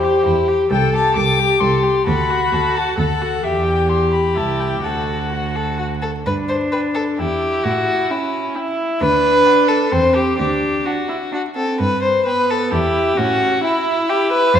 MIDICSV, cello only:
0, 0, Header, 1, 2, 480
1, 0, Start_track
1, 0, Tempo, 455235
1, 750, Time_signature, 3, 2, 24, 8
1, 4109, Tempo, 470958
1, 6989, Tempo, 460476
1, 15196, End_track
2, 0, Start_track
2, 0, Title_t, "Cello"
2, 0, Program_c, 0, 42
2, 0, Note_on_c, 0, 40, 58
2, 194, Note_off_c, 0, 40, 0
2, 276, Note_on_c, 0, 40, 59
2, 675, Note_off_c, 0, 40, 0
2, 748, Note_on_c, 0, 36, 61
2, 1148, Note_off_c, 0, 36, 0
2, 1226, Note_on_c, 0, 36, 53
2, 1625, Note_off_c, 0, 36, 0
2, 1696, Note_on_c, 0, 36, 60
2, 2102, Note_off_c, 0, 36, 0
2, 2182, Note_on_c, 0, 38, 62
2, 2585, Note_off_c, 0, 38, 0
2, 2659, Note_on_c, 0, 38, 49
2, 3063, Note_off_c, 0, 38, 0
2, 3137, Note_on_c, 0, 38, 60
2, 3543, Note_off_c, 0, 38, 0
2, 3624, Note_on_c, 0, 40, 46
2, 4583, Note_on_c, 0, 36, 38
2, 4599, Note_off_c, 0, 40, 0
2, 5057, Note_off_c, 0, 36, 0
2, 5063, Note_on_c, 0, 38, 35
2, 6281, Note_off_c, 0, 38, 0
2, 6518, Note_on_c, 0, 43, 45
2, 6891, Note_off_c, 0, 43, 0
2, 7477, Note_on_c, 0, 40, 46
2, 7853, Note_off_c, 0, 40, 0
2, 7957, Note_on_c, 0, 45, 52
2, 8333, Note_off_c, 0, 45, 0
2, 9373, Note_on_c, 0, 38, 57
2, 9749, Note_off_c, 0, 38, 0
2, 10326, Note_on_c, 0, 40, 60
2, 10712, Note_off_c, 0, 40, 0
2, 10814, Note_on_c, 0, 38, 52
2, 11201, Note_off_c, 0, 38, 0
2, 12282, Note_on_c, 0, 43, 52
2, 12666, Note_off_c, 0, 43, 0
2, 13243, Note_on_c, 0, 40, 59
2, 13624, Note_off_c, 0, 40, 0
2, 13722, Note_on_c, 0, 45, 60
2, 14101, Note_off_c, 0, 45, 0
2, 15139, Note_on_c, 0, 41, 71
2, 15196, Note_off_c, 0, 41, 0
2, 15196, End_track
0, 0, End_of_file